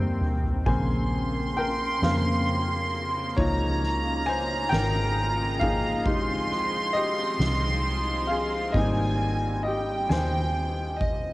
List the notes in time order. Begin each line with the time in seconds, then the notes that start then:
Already playing: D#2 D#3 G3 A#3 C4 C5 G5 C6
0.21 mid tom
0.43 floor tom
0.66 A#1 C#3 A#3 C4 C5 G#5 C6, kick, ride
1.12 ride
1.57 A#4 G5, ride
2.02 F2 C#3 A#3 C4 A#4 F5, snare
2.48 ride
2.93 ride
3.37 C#2 F3 G#3 A#3 D#4 F4 C#5 A#5, kick, ride
3.83 snare, ride
4.26 C5 G#5, ride
4.69 G#1 A#4 G5, snare, ride
5.18 ride
5.59 F3 A#3 D#4 G#4 F5, kick
6.05 F1 F3 G#3 C4 D#4 F4 G4 C6, kick, ride
6.51 snare, ride
6.93 G4 D#5, ride
7.39 C2, snare, ride
7.85 ride
8.27 G#4 F5, ride
8.72 G#1 G3 A#3 C4 D#4 D#5 G#5, kick, ride
9.20 ride
9.63 G4 D#5 G5, ride
10.09 D#2 C5 G#5, snare, ride
10.57 ride
11.00 D#5, kick, ride